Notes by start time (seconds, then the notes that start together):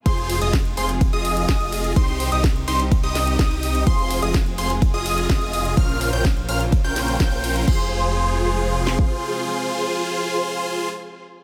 0.06 F1 C3 F3 G#3 F4 G#4 C5 C6, kick, closed hi-hat, ride
0.18 closed hi-hat
0.30 open hi-hat
0.41 F1 F4 G#4 D#5 D#6, closed hi-hat
0.53 kick, snare, closed hi-hat, ride
0.65 closed hi-hat
0.77 F1 F4 G#4 C5 C6, open hi-hat
0.89 closed hi-hat
1.01 kick, closed hi-hat, ride
1.13 F1 F4 G#4 D#5 D#6, closed hi-hat
1.25 open hi-hat
1.37 closed hi-hat
1.49 F1 F4 G#4 D#5 D#6, kick, snare, closed hi-hat, ride
1.61 closed hi-hat
1.72 open hi-hat
1.84 closed hi-hat
1.96 C2 C3 D#3 G3 D#4 G4 C5 C6, kick, closed hi-hat, ride
2.08 closed hi-hat
2.20 open hi-hat
2.32 C2 D#4 G4 D#5 D#6, closed hi-hat
2.44 kick, snare, closed hi-hat, ride
2.56 closed hi-hat
2.68 C2 D#4 G4 C5 C6, open hi-hat
2.80 closed hi-hat
2.92 kick, closed hi-hat, ride
3.03 C2 D#4 G4 D#5 D#6, closed hi-hat
3.15 snare, open hi-hat
3.27 closed hi-hat
3.39 C2 D#4 G4 D#5 D#6, kick, snare, closed hi-hat, ride
3.51 closed hi-hat
3.63 open hi-hat
3.75 closed hi-hat
3.87 F1 F3 G#3 F4 G#4 C5 C6, kick, closed hi-hat, ride
3.99 closed hi-hat
4.11 open hi-hat
4.22 F1 F4 G#4 D#5 D#6, closed hi-hat
4.34 kick, snare, closed hi-hat, ride
4.46 closed hi-hat
4.58 F1 F4 G#4 C5 C6, open hi-hat
4.70 closed hi-hat
4.82 kick, closed hi-hat, ride
4.94 F1 F4 G#4 D#5 D#6, closed hi-hat
5.06 open hi-hat
5.18 closed hi-hat
5.30 F1 F4 G#4 D#5 D#6, kick, snare, closed hi-hat, ride
5.41 closed hi-hat
5.53 open hi-hat
5.65 closed hi-hat
5.77 A#1 C#3 A#3 C#4 F4 A#4 C5 F5 F6, kick, closed hi-hat, ride
5.89 closed hi-hat
6.01 open hi-hat
6.13 A#1 C#4 F4 A#4 C5 G5 G6, closed hi-hat
6.25 kick, snare, closed hi-hat, ride
6.37 closed hi-hat
6.49 A#1 C#4 F4 A#4 C5 F5 F6, open hi-hat
6.60 closed hi-hat
6.72 kick, closed hi-hat, ride
6.84 A#1 C#4 F4 A#4 C5 G5 G6, closed hi-hat
6.96 snare, open hi-hat
7.08 closed hi-hat
7.20 A#1 C#4 F4 G6, kick, snare, closed hi-hat, ride
7.32 closed hi-hat
7.44 open hi-hat
7.56 closed hi-hat
7.68 F1 C3 F3 G#3 F4 G#4 C5 C6, kick, crash
8.87 snare
8.99 kick